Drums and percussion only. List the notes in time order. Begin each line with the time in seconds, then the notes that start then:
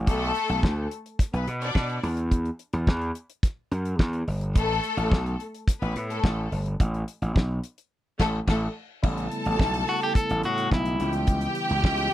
0.07 kick, closed hi-hat
0.35 closed hi-hat
0.49 closed hi-hat
0.63 kick, snare
0.91 closed hi-hat
1.06 closed hi-hat
1.19 kick, snare, closed hi-hat
1.34 closed hi-hat
1.47 closed hi-hat
1.62 closed hi-hat
1.75 kick, snare
1.89 closed hi-hat
2.03 open hi-hat
2.17 closed hi-hat
2.31 kick, closed hi-hat
2.45 closed hi-hat
2.59 closed hi-hat
2.73 closed hi-hat
2.87 kick, snare
3.01 closed hi-hat
3.15 closed hi-hat
3.30 closed hi-hat
3.43 kick, snare, closed hi-hat
3.72 closed hi-hat
3.85 closed hi-hat
3.99 kick, snare
4.13 closed hi-hat
4.28 open hi-hat
4.41 closed hi-hat
4.56 kick, closed hi-hat
4.83 closed hi-hat
4.98 closed hi-hat
5.12 kick, snare
5.26 closed hi-hat
5.40 closed hi-hat
5.54 closed hi-hat
5.68 kick, snare, closed hi-hat
5.82 closed hi-hat
5.96 closed hi-hat
6.10 closed hi-hat
6.24 kick, snare
6.52 open hi-hat
6.66 closed hi-hat
6.80 kick, closed hi-hat
6.94 closed hi-hat
7.08 closed hi-hat
7.22 closed hi-hat
7.36 kick, snare
7.64 closed hi-hat
7.78 closed hi-hat
8.20 kick, snare, crash
8.48 kick, snare, crash
9.04 kick, crash
9.18 closed hi-hat
9.31 closed hi-hat
9.45 closed hi-hat
9.59 kick, snare
9.74 closed hi-hat
9.88 open hi-hat
10.02 closed hi-hat
10.15 kick, snare, closed hi-hat
10.30 closed hi-hat
10.43 closed hi-hat
10.58 closed hi-hat
10.72 kick, snare
10.86 closed hi-hat
11.00 closed hi-hat
11.13 closed hi-hat
11.27 kick, closed hi-hat
11.41 closed hi-hat
11.55 closed hi-hat
11.69 closed hi-hat
11.84 kick, snare
11.98 closed hi-hat